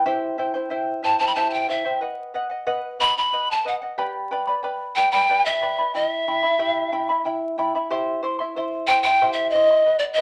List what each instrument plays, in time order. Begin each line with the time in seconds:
0.06 charango E4 G4 C5 E5 G5
0.38 charango E4 C5 E5 G5
0.54 charango E4 C5 G5
0.70 charango E4 C5 E5 G5
1.03 charango E4 C5 E5 G5, pan flute A5
1.19 charango E4 C5 G5, pan flute A5
1.27 pan flute B5
1.35 charango E4 G4 C5 E5 G5, pan flute A5
1.50 pan flute G5 A5
1.68 charango E4 C5 E5 G5, pan flute E5
1.85 charango E4 C5 G5
2.01 charango B4 D#5 F#5
2.34 charango B4 D#5 F#5
2.49 charango D#5 F#5
2.67 charango B4 D#5 F#5
2.99 charango B4 D#5 F#5, pan flute B5
3.17 charango D#5 F#5, pan flute B5
3.33 charango B4 D#5 F#5
3.51 pan flute A5
3.65 charango B4 D#5 F#5, pan flute F#5
3.82 charango D#5 F#5
3.98 charango G4 B4 D5 G5 B5
4.31 charango B4 D5 G5 B5
4.47 charango B4 D5 B5
4.63 charango B4 D5 G5 B5
4.96 charango B4 D5 G5 B5, pan flute G5
5.12 charango B4 D5 B5, pan flute G5
5.29 charango G4 B4 D5 G5 B5
5.45 pan flute E5
5.61 charango B4 D5 G5 B5
5.78 charango B4 D5 B5
5.94 charango E4 E5 G5 B5, pan flute D#5
6.09 pan flute E5
6.28 charango E4 E5 G5 B5
6.43 charango E4 E5 B5
6.59 charango E4 G4 E5 G5 B5
6.92 charango E4 E5 G5 B5
7.09 charango E4 E5 B5
7.25 charango E4 E5 G5 B5
7.58 charango E4 E5 G5 B5
7.75 charango E4 E5 B5
7.90 charango E4 G4 C5 E5 C6
8.23 charango E4 C5 E5 C6
8.39 charango E4 E5 C6
8.56 charango E4 C5 E5 C6
8.87 charango E4 C5 E5 C6, pan flute G5
9.03 charango E4 E5 C6, pan flute G5
9.21 charango E4 G4 C5 E5 C6
9.33 pan flute E5
9.50 charango C5, pan flute D#5
9.55 charango E4 E5 C6
9.71 charango E4 E5 C6
9.86 charango B4 D#5 F#5
9.99 pan flute D5
10.14 charango B4, pan flute D#5
10.18 charango D#5